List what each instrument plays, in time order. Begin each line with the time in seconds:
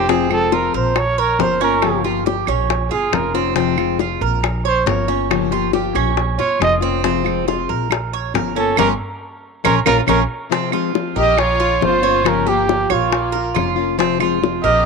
Already playing: upright bass F1, trumpet G4
0.08 nylon-string guitar C3 F3 G#3 C4 F4, cuban tres C4, trumpet G#4, high bongo
0.30 nylon-string guitar F3 G#3 C4 F4, trumpet A4, claves
0.52 nylon-string guitar F3 G#3 C4 F4, cuban tres F4, trumpet A#4, high bongo
0.74 upright bass A#1, cuban tres A#4, trumpet C5
0.96 trumpet C#5, muted nylon-string guitar stroke, high bongo, claves
1.18 trumpet A#4, cuban tres C#5
1.39 upright bass G1, nylon-string guitar F3 A#3 C#4 F4, cuban tres A#4, trumpet C5, high bongo, low bongo
1.61 nylon-string guitar A#3 C#4 F4, cuban tres C#4, trumpet A#4
1.82 nylon-string guitar C#3 F3 A#3 F4 G4, high bongo, claves
2.04 nylon-string guitar F3 A#3 F4 G4, cuban tres F4, high bongo
2.26 nylon-string guitar F3 A#3 F4 G4, cuban tres G4, high bongo
2.47 upright bass A#1, cuban tres C#4, high bongo, claves
2.70 muted nylon-string guitar stroke, high bongo
2.91 upright bass G1, cuban tres F4, trumpet G#4, high bongo
3.12 upright bass F1, nylon-string guitar F3 A#3 C#4 F4, trumpet A#4, high bongo, low bongo, claves
3.34 nylon-string guitar A#3 C#4 F4, cuban tres C4
3.56 nylon-string guitar C3 F3 G#3 C4 F4, cuban tres C4, high bongo
3.78 nylon-string guitar F3 G#3 C4 F4, claves
3.99 nylon-string guitar F3 G#3 C4 F4, cuban tres F4, high bongo
4.21 upright bass A#1, cuban tres A#4
4.43 muted nylon-string guitar stroke, high bongo, claves
4.65 trumpet C5, cuban tres C#5
4.86 upright bass G1, nylon-string guitar F3 A#3 C#4 F4, cuban tres A#4, trumpet C#5, high bongo, low bongo
5.08 nylon-string guitar A#3 C#4 F4, cuban tres C#4
5.30 nylon-string guitar C#3 F3 A#3 F4 G4, high bongo, claves
5.51 nylon-string guitar F3 A#3 F4 G4, cuban tres F4, high bongo
5.73 nylon-string guitar F3 A#3 F4 G4, cuban tres G4, high bongo
5.95 upright bass A#1, cuban tres C#4, high bongo, claves
6.17 high bongo
6.38 upright bass G1, cuban tres F4, trumpet C#5, high bongo
6.60 upright bass F1, nylon-string guitar F3 A#3 C#4 F4, trumpet D#5, high bongo, low bongo, claves
6.81 nylon-string guitar A#3 C#4 F4, cuban tres C4
7.03 nylon-string guitar C3 F3 G#3 C4 F4, cuban tres C4, high bongo
7.24 nylon-string guitar F3 G#3 C4 F4, claves
7.46 nylon-string guitar F3 G#3 C4 F4, cuban tres F4, high bongo
7.69 upright bass A#1, cuban tres A#4
7.90 muted nylon-string guitar stroke, high bongo, claves
8.13 cuban tres C#5
8.34 upright bass G1, nylon-string guitar F3 A#3 C#4 F4, cuban tres A#4, high bongo, low bongo
8.56 nylon-string guitar A#3 C#4 F4, cuban tres C#4, trumpet A4
8.77 upright bass G1, nylon-string guitar G3 A#3 C#4, cuban tres C#4 F4 G4, trumpet A#4, low bongo, claves
9.64 upright bass A#1, nylon-string guitar F3 A#3 C#4, cuban tres C#4 F4 A#4, trumpet A#4, low bongo, claves
9.86 upright bass A#1, nylon-string guitar F3 A#3 C#4, cuban tres C#4 F4 A#4, trumpet A#4, low bongo, claves
10.07 upright bass A#1, nylon-string guitar F3 A#3 C#4, cuban tres C#4 F4 A#4, trumpet A#4, low bongo, claves
10.50 nylon-string guitar C3 F3 G#3 C4 F4, cuban tres C4, high bongo
10.72 nylon-string guitar F3 G#3 C4 F4, cuban tres F4, high bongo, claves
10.94 nylon-string guitar F3 G#3 C4 F4, high bongo
11.16 upright bass A#1, violin section G4, cuban tres A#4, trumpet D#5, high bongo
11.37 violin section F4, trumpet C#5, muted nylon-string guitar stroke, high bongo, claves
11.60 cuban tres F4, high bongo
11.81 upright bass G1, nylon-string guitar F3 A#3 C#4 F4, violin section F4, trumpet C5, high bongo, low bongo
12.02 nylon-string guitar A#3 C#4 F4, cuban tres C#5
12.24 nylon-string guitar C#3 F3 A#3 F4 G4, violin section C#4, high bongo, claves
12.28 trumpet A#4
12.46 nylon-string guitar F3 A#3 F4 G4, violin section A#3, cuban tres G4, trumpet G4, high bongo
12.68 nylon-string guitar F3 A#3 F4 G4, high bongo
12.90 upright bass A#1, violin section A#3, trumpet F4, cuban tres C#5, high bongo, claves
13.12 muted nylon-string guitar stroke, high bongo
13.32 cuban tres A#4, high bongo
13.54 upright bass F1, nylon-string guitar F3 A#3 C#4 F4, cuban tres F4, high bongo, low bongo, claves
13.76 nylon-string guitar A#3 C#4 F4
13.98 nylon-string guitar C3 F3 G#3 C4 F4, cuban tres C4, high bongo
14.20 nylon-string guitar F3 G#3 C4 F4, cuban tres F4, high bongo, claves
14.41 nylon-string guitar F3 G#3 C4 F4, high bongo
14.63 upright bass A#1, violin section G4, cuban tres A#4, trumpet D#5, high bongo